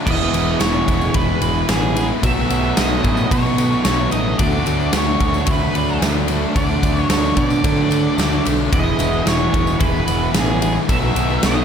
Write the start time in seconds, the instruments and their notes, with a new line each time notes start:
0.05 picked electric bass E1, distorted electric guitar E2 B2, overdriven electric guitar E3 G#3 B3 E4, lead electric guitar D#5, kick, crash, tambourine
0.33 picked electric bass E1, distorted electric guitar B2, overdriven electric guitar E3 G#3 B3 E4, ride, tambourine
0.60 picked electric bass E1, distorted electric guitar E2 B2, overdriven electric guitar E3 G#3 B3 E4, lead electric guitar C#5, snare, ride, tambourine
0.88 picked electric bass E1, distorted electric guitar B2, overdriven electric guitar E3 G#3 B3 E4, kick, ride
1.01 tambourine
1.14 picked electric bass E1, overdriven electric guitar E3 G#3 B3 E4, lead electric guitar B4, kick, ride
1.41 picked electric bass E1, overdriven electric guitar E3 G#3 B3 E4, ride, tambourine
1.55 tambourine
1.68 picked electric bass A1, distorted electric guitar E2 B2, overdriven electric guitar E3 G#3 B3 E4, lead electric guitar G#4, snare, ride, tambourine
1.95 distorted electric guitar B2, overdriven electric guitar E3 G#3 B3 E4, ride, tambourine
2.23 picked electric bass B1, overdriven electric guitar B2 D#3 F#3 A3 D#4 F#4, distorted electric guitar B3, lead electric guitar E5, kick, ride, tambourine
2.48 picked electric bass B1, overdriven electric guitar B2 F#3 A3 D#4, distorted electric guitar B3, ride, tambourine
2.64 tambourine
2.77 picked electric bass B1, overdriven electric guitar B2 F#3 A3 D#4, distorted electric guitar B3, lead electric guitar D#5, snare, ride, tambourine
3.02 picked electric bass A2, overdriven electric guitar B2 F#3 A3, distorted electric guitar B3, kick, ride
3.06 overdriven electric guitar D#4
3.17 tambourine
3.31 overdriven electric guitar B2 F#3 A3 D#4, picked electric bass B2, lead electric guitar C#5, kick, ride
3.58 overdriven electric guitar B2 F#3 A3 D#4, ride, tambourine
3.72 tambourine
3.84 picked electric bass B1, overdriven electric guitar B2 F#3 A3 D#4, distorted electric guitar B3, lead electric guitar C#5, snare, ride, tambourine
4.11 picked electric bass A1, overdriven electric guitar B2 F#3 A3 D#4, distorted electric guitar B3, lead electric guitar D#5, ride, tambourine
4.39 picked electric bass D2, overdriven electric guitar D3 F#3 A3 D4 F#4, lead electric guitar D5, kick, ride, tambourine
4.65 picked electric bass D2, overdriven electric guitar D3 F#3 A3 D4, ride, tambourine
4.80 tambourine
4.93 picked electric bass D2, overdriven electric guitar D3 F#3 A3 D4, lead electric guitar C#5, snare, ride, tambourine
5.20 picked electric bass D2, overdriven electric guitar D3 F#3 A3 D4, kick, ride
5.34 tambourine
5.46 picked electric bass D2, overdriven electric guitar D3 F#3 A3 D4, lead electric guitar B4, kick, ride
5.74 picked electric bass D2, overdriven electric guitar D3 F#3 A3 D4, ride
5.89 tambourine
6.00 picked electric bass D2, overdriven electric guitar D3 F#3 A3 D4, snare, ride, tambourine
6.28 overdriven electric guitar D3 F#3 A3 D4, ride, tambourine
6.55 picked electric bass D2, overdriven electric guitar D3 F#3 A3 D4, lead electric guitar D5, kick, ride, tambourine
6.70 tambourine
6.83 picked electric bass D2, overdriven electric guitar D3 F#3 A3 D4, kick, ride, tambourine
6.97 lead electric guitar C#5, tambourine
7.10 picked electric bass D2, overdriven electric guitar D3 F#3 A3 D4, lead electric guitar C#5, snare, ride, tambourine
7.24 tambourine
7.37 picked electric bass B2, overdriven electric guitar D3 F#3 A3 D4, lead electric guitar D5, kick, ride, tambourine
7.50 tambourine
7.64 overdriven electric guitar D3 F#3 A3 D4, picked electric bass D3, kick, ride
7.90 overdriven electric guitar D3 F#3 A3 D4, ride, tambourine
8.17 picked electric bass D2, overdriven electric guitar D3 F#3 A3 D4, snare, ride, tambourine
8.32 tambourine
8.44 picked electric bass B1, overdriven electric guitar D3 F#3 A3 D4, ride, tambourine
8.71 picked electric bass E1, distorted electric guitar E2, overdriven electric guitar E3 G#3 B3 E4, lead electric guitar D#5, kick, ride, tambourine
8.75 distorted electric guitar B2 E3
8.97 picked electric bass E1, overdriven electric guitar E3 G#3 B3 E4, ride, tambourine
9.03 distorted electric guitar B2
9.13 tambourine
9.25 picked electric bass E1, distorted electric guitar E2 B2, overdriven electric guitar E3 G#3 B3 E4, lead electric guitar C#5, snare, ride, tambourine
9.30 distorted electric guitar E3
9.52 picked electric bass E1, overdriven electric guitar E3 G#3 B3 E4, kick, ride
9.57 distorted electric guitar B2
9.67 tambourine
9.79 picked electric bass E1, overdriven electric guitar E3 G#3 B3 E4, lead electric guitar B4, kick, ride
10.06 picked electric bass E1, overdriven electric guitar E3 G#3 B3 E4, ride, tambourine
10.21 tambourine
10.33 picked electric bass A1, distorted electric guitar E2 B2, overdriven electric guitar E3 G#3 B3 E4, lead electric guitar G#4, snare, ride, tambourine
10.37 distorted electric guitar E3
10.60 distorted electric guitar B2, overdriven electric guitar E3 G#3 B3 E4, ride, tambourine
10.87 picked electric bass B1, overdriven electric guitar B2 D#3 F#3 A3 D#4, lead electric guitar E5, kick, ride, tambourine
10.91 distorted electric guitar B3, overdriven electric guitar F#4
11.13 picked electric bass B1, overdriven electric guitar B2 F#3 A3 D#4, distorted electric guitar B3, ride, tambourine
11.30 tambourine
11.41 picked electric bass B1, overdriven electric guitar B2 F#3 A3 D#4, snare, ride, tambourine
11.45 distorted electric guitar B3, lead electric guitar D#5